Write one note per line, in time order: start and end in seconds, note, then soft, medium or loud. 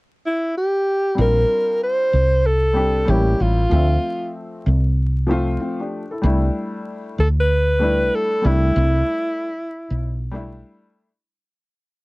0.26 0.54 E4 medium
0.57 1.15 G4 medium
1.15 1.43 A#1 medium
1.15 2.13 G3 medium
1.15 2.13 C4 medium
1.15 2.14 D4 medium
1.15 2.14 F4 medium
1.21 1.79 A#4 loud
1.83 2.48 C5 medium
2.13 3.04 C2 medium
2.46 3.11 A4 loud
2.73 3.04 G3 medium
2.73 3.07 C4 medium
2.73 3.08 D4 medium
2.73 3.08 G4 medium
3.05 3.33 A1 medium
3.05 3.60 G3 medium
3.05 3.61 A#3 medium
3.05 3.61 C#4 medium
3.05 3.62 E4 medium
3.10 3.43 G4 medium
3.40 3.65 A1 medium
3.40 4.35 F4 medium
3.69 3.96 D2 loud
3.69 4.66 F3 medium
3.69 4.67 A3 medium
3.69 4.67 C4 medium
3.69 4.68 E5 medium
4.66 5.56 C2 medium
5.27 6.02 F3 medium
5.27 6.02 A3 medium
5.27 5.60 C4 medium
5.31 5.59 F4 loud
5.60 5.79 C4 medium
5.60 5.79 F4 medium
5.80 6.10 D4 medium
5.80 6.10 G4 medium
6.11 6.24 E4 soft
6.11 6.41 A4 medium
6.22 6.49 C2 medium
6.22 7.19 G3 medium
6.22 7.19 A3 medium
6.22 7.20 D4 medium
6.22 7.20 E4 medium
7.18 8.09 D2 medium
7.18 7.28 A4 loud
7.40 8.17 B4 loud
7.79 8.40 G3 medium
7.79 8.41 A3 medium
7.79 8.43 D4 medium
7.79 8.44 E4 medium
8.15 8.48 A4 loud
8.42 8.70 C2 medium
8.42 9.46 G3 medium
8.42 9.46 A3 medium
8.42 9.47 D4 medium
8.46 9.48 E4 medium
8.46 10.35 E4 medium
8.76 9.01 C2 medium
9.90 10.62 B1 medium
10.31 11.06 G3 medium
10.31 11.07 A3 medium
10.31 11.08 D4 medium
10.31 11.08 E4 loud